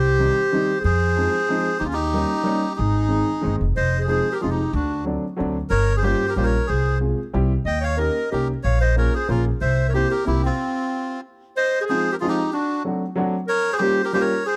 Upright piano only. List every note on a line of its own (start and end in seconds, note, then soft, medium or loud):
0.18 0.36 D#3 medium
0.18 0.36 G3 soft
0.18 0.36 C4 soft
0.18 0.37 D#4 medium
0.52 0.69 D#3 medium
0.52 0.69 G3 medium
0.52 0.69 C4 medium
0.52 0.70 D#4 medium
1.16 1.33 F3 medium
1.16 1.34 G#3 soft
1.16 1.34 C4 medium
1.16 1.34 D#4 medium
1.49 1.66 F3 medium
1.49 1.66 G#3 medium
1.49 1.66 C4 medium
1.49 1.67 D#4 medium
2.14 2.30 G3 medium
2.14 2.31 A#3 medium
2.14 2.31 C#4 soft
2.14 2.31 D#4 medium
2.44 2.62 G3 medium
2.44 2.62 A#3 medium
2.44 2.62 C#4 medium
2.44 2.63 D#4 medium
3.08 3.27 D#3 soft
3.08 3.27 G#3 soft
3.08 3.27 C4 medium
3.08 3.28 D#4 medium
3.41 3.60 D#3 medium
3.41 3.60 G#3 medium
3.41 3.60 C4 medium
3.41 3.61 D#4 medium
4.07 4.25 F3 soft
4.07 4.26 G#3 medium
4.07 4.26 C4 soft
4.07 4.26 D#4 medium
4.41 4.58 F3 medium
4.41 4.58 G#3 medium
4.41 4.59 C4 medium
4.41 4.60 D#4 medium
5.04 5.22 F#3 medium
5.04 5.23 A3 soft
5.04 5.23 C4 medium
5.04 5.24 D4 medium
5.36 5.55 F#3 medium
5.36 5.55 A3 medium
5.36 5.55 C4 medium
5.36 5.56 D4 medium
6.03 6.20 G3 medium
6.03 6.21 A#3 soft
6.03 6.21 C#4 medium
6.03 6.21 F4 medium
6.36 6.53 G3 medium
6.36 6.54 A#3 medium
6.36 6.53 C#4 medium
6.36 6.54 F4 medium
6.99 7.17 G#3 medium
6.99 7.18 C4 soft
6.99 7.18 F4 soft
6.99 7.18 G#4 medium
7.33 7.51 G3 medium
7.33 7.51 C4 medium
7.33 7.51 E4 medium
7.33 7.51 G4 medium
7.97 8.15 A#3 soft
7.97 8.16 C#4 soft
7.97 8.15 D#4 soft
7.97 8.16 G4 medium
8.32 8.49 A#3 medium
8.32 8.49 C#4 medium
8.32 8.49 D#4 medium
8.32 8.50 G4 medium
8.96 9.13 A#3 medium
8.96 9.13 C#4 soft
8.96 9.14 F4 medium
8.96 9.14 G#4 medium
9.29 9.46 A#3 medium
9.29 9.46 C#4 medium
9.29 9.46 F4 medium
9.29 9.47 G#4 medium
9.93 10.10 A#3 soft
9.93 10.11 C4 medium
9.93 10.11 E4 medium
9.93 10.11 G4 medium
10.25 10.42 A#3 medium
10.25 10.42 C4 medium
10.25 10.43 E4 medium
10.25 10.43 G4 medium
11.89 12.06 F3 medium
11.89 12.06 G#3 medium
11.89 12.06 C4 medium
11.89 12.07 D#4 medium
11.89 12.07 F4 medium
12.22 12.38 F3 medium
12.22 12.38 G#3 medium
12.22 12.39 C4 medium
12.22 12.39 D#4 medium
12.22 12.39 F4 medium
12.84 13.02 F#3 medium
12.84 13.02 A3 medium
12.84 13.02 C4 soft
12.84 13.02 D4 medium
12.84 13.03 F#4 medium
13.16 13.33 F#3 medium
13.16 13.33 A3 medium
13.16 13.34 C4 medium
13.16 13.34 D4 medium
13.16 13.34 F#4 medium
13.80 13.97 G3 medium
13.80 13.98 A#3 medium
13.80 13.98 C#4 medium
13.80 13.99 F4 medium
13.80 13.99 G4 medium
14.13 14.30 G3 medium
14.13 14.31 A#3 medium
14.13 14.31 C#4 medium
14.13 14.31 F4 medium
14.13 14.31 G4 medium